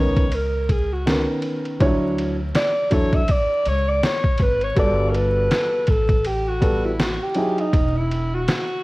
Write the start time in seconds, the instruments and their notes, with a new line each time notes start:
Already playing: upright bass C#2, grand piano D#3 B3 C#4 A#4, alto saxophone C#5
0.16 kick, ride
0.32 alto saxophone A#4, ride
0.69 alto saxophone G#4, kick, ride
0.92 alto saxophone F#4
1.06 grand piano D#3 B3 C#4 A#4, snare, hi-hat pedal, ride
1.42 ride
1.65 ride
1.80 upright bass D2, grand piano F3 D4 E4 C#5, kick, ride
1.86 grand piano F#3
2.18 ride
2.55 alto saxophone D5, snare, hi-hat pedal, ride
2.90 upright bass E2, grand piano F#3 D4 E4 A4, alto saxophone C#5, kick, ride
3.13 alto saxophone E5, kick, ride
3.28 alto saxophone D5, kick, ride
3.65 upright bass C#2, alto saxophone C#5, ride
3.88 alto saxophone D5
4.03 alto saxophone C#5, snare, hi-hat pedal, ride
4.24 kick
4.38 upright bass G#1, kick, ride
4.42 alto saxophone B4
4.61 alto saxophone C#5, ride
4.75 upright bass G1, grand piano G3 B3 F#4 A4, alto saxophone D5, kick, ride
5.10 alto saxophone A#4
5.15 alto saxophone B4, ride
5.51 snare, hi-hat pedal, ride
5.87 upright bass A1, alto saxophone A4, kick, ride
6.09 kick, ride
6.25 alto saxophone G4, ride
6.48 alto saxophone F#4
6.60 grand piano G3 B3 F#4 A4, kick, ride
6.85 alto saxophone E4
7.00 alto saxophone F#4, snare, hi-hat pedal, ride
7.22 alto saxophone G4
7.34 grand piano F#3 D#4 E4 G#4, ride
7.58 alto saxophone D#4, ride
7.73 upright bass E1, kick, ride
7.96 alto saxophone E4
8.11 ride
8.34 alto saxophone F#4
8.48 snare, hi-hat pedal, ride